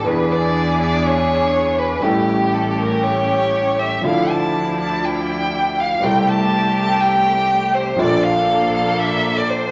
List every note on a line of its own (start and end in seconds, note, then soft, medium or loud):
0.03 1.93 E2 medium
0.03 1.92 E3 medium
0.03 1.92 B3 medium
0.03 1.93 D4 medium
0.03 1.93 E4 medium
0.03 1.93 G#4 medium
0.03 0.33 B4 medium
0.08 1.94 G#4 medium
0.32 0.80 D5 loud
0.81 1.08 D5 loud
1.06 1.80 C#5 loud
1.79 2.04 B4 medium
2.00 3.93 A1 medium
2.00 3.93 A2 medium
2.00 3.92 G3 medium
2.00 3.94 A3 medium
2.00 3.93 C#4 medium
2.00 3.94 C#4 medium
2.00 3.94 E4 medium
2.00 2.56 G4 medium
2.00 3.94 G4 medium
2.04 3.94 A4 medium
2.54 2.80 A4 medium
2.79 3.05 A#4 medium
3.03 3.81 C#5 medium
3.79 4.04 E5 medium
4.01 5.93 D2 medium
4.01 5.93 D3 medium
4.01 5.92 F3 medium
4.01 5.93 F3 medium
4.01 5.93 D4 medium
4.01 5.93 E4 medium
4.01 4.32 F5 medium
4.06 5.94 A4 medium
4.31 4.80 A5 loud
4.80 5.06 A5 loud
5.05 5.81 G5 loud
5.80 6.05 F5 loud
6.00 7.89 C2 medium
6.00 7.89 C3 medium
6.00 7.87 G3 medium
6.00 7.89 A3 medium
6.00 7.88 C4 medium
6.00 7.89 C4 medium
6.00 7.89 E4 medium
6.00 7.89 G4 medium
6.00 6.31 G5 loud
6.04 7.90 A4 medium
6.29 6.77 A5 loud
6.79 7.02 A5 loud
7.00 7.76 G5 loud
7.74 8.01 C5 medium
7.96 9.71 A#1 medium
7.96 9.71 A#2 medium
7.96 9.71 F3 medium
7.96 9.71 A#3 medium
7.96 9.71 D4 medium
7.96 9.71 A4 medium
7.96 8.25 D5 loud
8.00 9.71 A4 medium
8.23 8.73 F5 loud
8.74 9.00 F5 medium
8.99 9.38 E5 loud
9.37 9.51 D5 medium
9.50 9.71 C5 medium